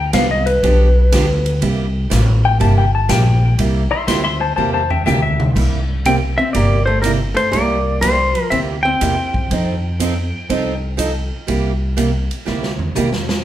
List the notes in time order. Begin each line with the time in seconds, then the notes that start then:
Already playing: D2
0.00 G5
0.13 C2 D3 F3 B3 D4 G4 F5, kick, snare, hi-hat pedal, ride
0.31 D#5
0.46 B4, ride
0.63 B1 D3 F3 B3 D4 G4, kick, ride
1.12 D2 D3 F3 B3 D4 G4, kick, snare, hi-hat pedal, ride
1.46 ride
1.61 C2 C3 G3 A#3 E4 G4, kick, ride
2.10 A1 C3 G3 A#3 E4 G4, kick, snare, hi-hat pedal, ride
2.45 G5
2.59 G1 C3 G3 A#3 E4 G4 A5, kick, ride
2.78 G5
2.95 A5
3.09 A#1 C3 G3 A#3 E4 G4 G5, kick, snare, hi-hat pedal, ride
3.58 C2 C3 G3 A#3 E4 G4, kick, ride
3.91 E5 C6, muted upright bass stroke
4.07 D2 C3 G3 A#3 E4 G4 E5 C6, kick, snare, hi-hat pedal, ride
4.24 E5 C6
4.40 C5 A5
4.56 E2 C3 G3 A#3 E4 G4 C5 A5, floor tom
4.73 C5 A5
4.90 E5 G5, floor tom
5.06 D2 C3 G3 A#3 E4 G4 E5 G5, hi-hat pedal, mid tom
5.22 E5
5.40 mid tom
5.55 C2 C3 G3 A#3 E4 G4, kick, crash
6.05 C3 G3 A#3 C4 E4 G4 G5, kick, hi-hat pedal, ride
6.38 C4 E5
6.53 G1 C3 G3 A#3 E4 G4 D5, kick, ride
6.86 A3 C5
7.02 C3 G3 A#3 E4 A#4, kick, hi-hat pedal, ride
7.06 G4
7.34 A3 C5, ride
7.52 C2 C3 G3 A#3 E4 G4 D5, kick, ride
8.01 C3 G3 A#3 E4 G4 C5, kick, hi-hat pedal, ride
8.35 ride
8.50 D2 C3 G3 A#3 C4 E4 G4 E5, kick, ride
8.83 C4 G5
9.01 E2 C3 G3 A#3 E4 G4, kick, hi-hat pedal, ride
9.34 kick
9.51 F2 F3 C4 D#4 A4, kick, ride
10.00 F3 C4 D#4 A4, kick, hi-hat pedal, ride
10.49 C2 F3 C4 D#4 A4, kick, ride
10.97 F3 C4 D#4 A4, kick, hi-hat pedal, ride
11.47 C2 C3 G3 A#3 E4 G4, kick, ride
11.97 C3 G3 A#3 E4 G4, kick, hi-hat pedal, ride
12.31 ride
12.45 D2 C3 G3 A#3 E4 G4, snare
12.63 snare
12.79 floor tom
12.95 E2 C3 G3 A#3 E4 G4, hi-hat pedal, mid tom
13.13 snare
13.29 snare